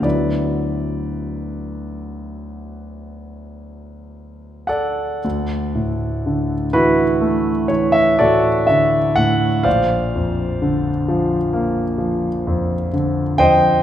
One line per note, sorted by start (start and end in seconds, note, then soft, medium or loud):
0.00 5.18 D2 soft
0.00 5.19 D3 soft
0.00 5.19 F#3 soft
0.00 5.20 B3 soft
0.00 4.67 D5 soft
0.04 5.21 E4 soft
0.04 4.66 B4 soft
4.67 6.67 A4 soft
4.67 6.66 D5 soft
4.67 6.70 F#5 medium
5.25 9.62 D2 soft
5.75 6.52 A2 soft
6.26 7.02 D3 soft
6.73 7.51 E3 soft
6.73 7.66 E4 soft
6.73 7.65 F#4 soft
6.73 7.69 B4 medium
7.21 7.98 A3 soft
7.68 8.48 E3 soft
7.68 7.93 C#5 soft
7.92 8.17 E5 medium
8.19 8.99 A2 soft
8.19 8.65 F#4 soft
8.19 8.65 A4 medium
8.19 8.68 D5 medium
8.67 9.47 D3 soft
8.67 9.17 E5 medium
9.16 9.66 A2 soft
9.16 9.65 F#5 medium
9.63 13.83 A#1 soft
9.63 12.88 C5 soft
9.63 12.88 D5 soft
9.63 12.92 F5 medium
10.16 10.90 F2 soft
10.62 11.36 D3 soft
11.08 11.82 F3 soft
11.53 12.27 A#3 soft
11.98 12.73 F3 soft
12.47 13.22 F2 soft
12.93 13.69 D3 soft
13.38 13.83 F2 soft
13.38 13.83 C5 medium
13.38 13.83 D#5 medium
13.38 13.83 G5 medium